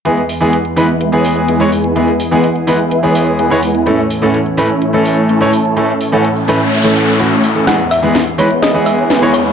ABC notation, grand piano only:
X:1
M:4/4
L:1/16
Q:1/4=126
K:E
V:1 name="Grand piano"
[E,G,B,G] z2 [E,G,B,G] z2 [E,G,B,B] z2 [E,G,B,G]4 [E,G,B,c] z2 | [E,G,B,G] z2 [E,G,B,G] z2 [E,G,B,B] z2 [E,G,B,G]4 [E,G,B,c] z2 | [A,,E,A,CA] z2 [A,,E,A,CA] z2 [A,,E,A,CB] z2 [A,,E,A,CA]4 [A,,E,A,Cc] z2 | [A,,E,A,CA] z2 [A,,E,A,CA] z2 [A,,E,A,CB] z2 [A,,E,A,CA]3 [A,,E,A,CF] z2 [E,A,CA] |
[E,G,B,G] z2 [E,G,B,G] z2 [E,G,B,B] z2 [E,G,B,G]4 [E,G,B,c] z2 |]